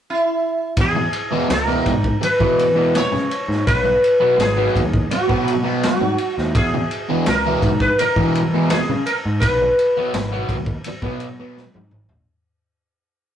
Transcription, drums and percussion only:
0.77 kick loud
0.77 ride medium
1.13 ride medium
1.50 snare loud
1.50 ride medium
1.86 kick medium
1.86 ride medium
2.04 kick medium
2.23 ride medium
2.40 kick medium
2.59 ride medium
2.95 snare loud
2.95 ride medium
3.14 snare soft
3.31 ride medium
3.51 snare soft
3.67 kick loud
3.67 ride medium
4.04 ride medium
4.40 snare loud
4.40 ride medium
4.76 kick medium
4.76 ride medium
4.94 kick medium
5.11 ride medium
5.29 kick medium
5.48 ride medium
5.83 snare loud
5.83 ride medium
6.18 ride medium
6.38 snare soft
6.55 kick loud
6.55 ride medium
6.91 ride medium
7.26 snare loud
7.26 ride medium
7.62 kick medium
7.62 ride medium
7.80 kick medium
7.99 ride medium
8.16 kick medium
8.35 ride medium
8.70 snare loud
8.70 ride medium
9.06 ride medium
9.42 kick loud
9.42 ride loud
9.79 ride medium
10.14 snare loud
10.14 ride medium
10.49 kick medium
10.49 ride medium
10.66 kick medium
10.84 ride medium
11.02 kick medium
11.20 ride medium
11.57 snare medium
11.74 high tom medium
11.91 mid tom medium
12.09 floor tom medium

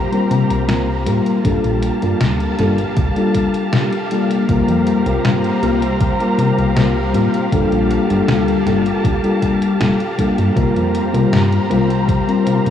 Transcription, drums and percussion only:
0.13 closed hi-hat soft
0.31 closed hi-hat medium
0.50 closed hi-hat medium
0.69 snare loud
0.69 closed hi-hat medium
1.07 closed hi-hat medium
1.26 closed hi-hat medium
1.45 kick loud
1.45 closed hi-hat medium
1.64 closed hi-hat soft
1.82 closed hi-hat medium
2.02 closed hi-hat medium
2.21 snare loud
2.21 closed hi-hat medium
2.40 closed hi-hat soft
2.59 snare soft
2.59 closed hi-hat medium
2.78 closed hi-hat medium
2.97 kick loud
2.97 closed hi-hat medium
3.16 closed hi-hat soft
3.35 kick medium
3.35 closed hi-hat medium
3.54 closed hi-hat medium
3.73 snare loud
3.73 closed hi-hat medium
3.92 closed hi-hat soft
4.11 closed hi-hat medium
4.31 closed hi-hat medium
4.49 kick loud
4.49 closed hi-hat medium
4.68 closed hi-hat soft
4.87 closed hi-hat medium
5.06 closed hi-hat medium
5.25 snare loud
5.25 closed hi-hat medium
5.44 closed hi-hat soft
5.63 closed hi-hat medium
5.82 closed hi-hat soft
6.01 kick loud
6.01 closed hi-hat medium
6.20 closed hi-hat soft
6.39 closed hi-hat medium
6.58 closed hi-hat soft
6.77 snare loud
6.77 closed hi-hat medium
7.15 closed hi-hat medium
7.34 closed hi-hat medium
7.52 kick loud
7.52 closed hi-hat medium
7.72 closed hi-hat soft
7.91 closed hi-hat medium
8.10 closed hi-hat medium
8.29 snare loud
8.29 closed hi-hat medium
8.48 closed hi-hat soft
8.67 snare soft
8.67 closed hi-hat medium
8.86 closed hi-hat soft
9.04 kick loud
9.04 closed hi-hat medium
9.24 closed hi-hat soft
9.42 kick medium
9.42 closed hi-hat medium
9.62 closed hi-hat medium
9.81 snare loud
9.81 closed hi-hat medium
10.00 closed hi-hat soft
10.18 kick medium
10.18 closed hi-hat medium
10.38 closed hi-hat medium
10.56 kick loud
10.56 closed hi-hat medium
10.76 closed hi-hat soft
10.95 closed hi-hat medium
11.14 closed hi-hat soft
11.33 snare loud
11.33 closed hi-hat medium
11.52 closed hi-hat soft
11.71 closed hi-hat medium
11.90 closed hi-hat soft
12.09 kick loud
12.09 closed hi-hat medium
12.29 closed hi-hat soft
12.47 closed hi-hat medium
12.66 closed hi-hat soft

